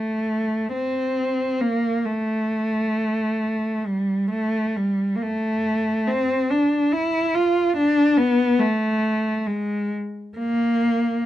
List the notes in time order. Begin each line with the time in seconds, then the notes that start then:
Already playing: A3
0.73 C4
1.61 A#3
2.05 A3
3.86 G3
4.30 A3
4.77 G3
5.16 A#3
5.22 A3
6.07 C4
6.50 D4
6.92 E4
7.34 F4
7.77 D4
8.17 B3
8.59 A3
9.46 G#3
10.38 A#3